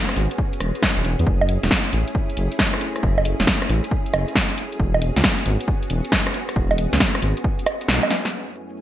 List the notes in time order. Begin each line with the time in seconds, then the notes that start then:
Already playing: B3 C#4 F#4 G#4
0.09 cross-stick, closed hi-hat
0.16 G#1, closed hi-hat
0.31 closed hi-hat
0.38 kick
0.53 closed hi-hat
0.60 E1, cross-stick, closed hi-hat
0.75 closed hi-hat
0.83 kick, snare
0.97 E1, closed hi-hat
1.05 E1, closed hi-hat
1.19 E2, closed hi-hat
1.27 F#1 A3 E4, kick
1.41 high bongo
1.49 closed hi-hat
1.63 E1, snare, closed hi-hat
1.71 kick, snare
1.85 closed hi-hat
1.93 A1, closed hi-hat
2.08 closed hi-hat
2.15 kick
2.30 closed hi-hat
2.37 F#1, closed hi-hat
2.52 closed hi-hat
2.59 kick, snare
2.74 cross-stick
2.81 closed hi-hat
2.96 cross-stick, closed hi-hat
3.03 F#1, kick
3.18 high bongo
3.25 closed hi-hat
3.40 E1, snare, closed hi-hat
3.47 kick, snare
3.62 cross-stick, closed hi-hat
3.69 A1, closed hi-hat
3.84 closed hi-hat
3.91 kick
4.06 closed hi-hat
4.13 F#1, cross-stick, closed hi-hat, high bongo
4.28 closed hi-hat
4.35 kick, snare
4.50 closed hi-hat
4.58 B3 F#4, closed hi-hat
4.72 closed hi-hat
4.80 E1, kick
4.94 high bongo
5.02 closed hi-hat
5.16 C#2, snare, closed hi-hat
5.24 kick, snare
5.38 closed hi-hat
5.46 G#1, closed hi-hat
5.61 closed hi-hat
5.68 kick
5.83 closed hi-hat
5.90 E1, closed hi-hat
6.05 closed hi-hat
6.12 kick, snare
6.27 cross-stick
6.34 closed hi-hat
6.49 cross-stick, closed hi-hat
6.56 E1, kick
6.71 closed hi-hat, high bongo
6.78 closed hi-hat
6.93 C#2, snare, closed hi-hat
7.00 kick, snare
7.15 cross-stick, closed hi-hat
7.22 G#1, closed hi-hat
7.37 closed hi-hat
7.44 kick
7.59 closed hi-hat
7.66 cross-stick, closed hi-hat, high bongo
7.81 closed hi-hat
7.88 B1, snare
8.03 closed hi-hat, high bongo
8.11 snare, closed hi-hat
8.25 snare, closed hi-hat
8.33 F#2 A3 C#4 E4 G#4, cabasa
8.55 cabasa
8.69 cabasa
8.77 cabasa